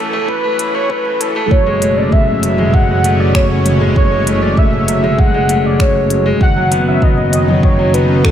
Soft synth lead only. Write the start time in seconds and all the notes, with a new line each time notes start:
Already playing: A4
0.28 B4
0.75 C#5
0.90 B4
1.21 A4
1.51 C#5
1.97 D5
2.12 E5
2.74 F#5
3.20 D5
3.35 C#5
3.97 C#5
4.42 D5
4.58 E5
5.19 F#5
5.66 D5
5.81 C#5
6.42 F#5
6.88 E5
7.03 D#5
7.64 C#5
7.94 B4
8.25 A4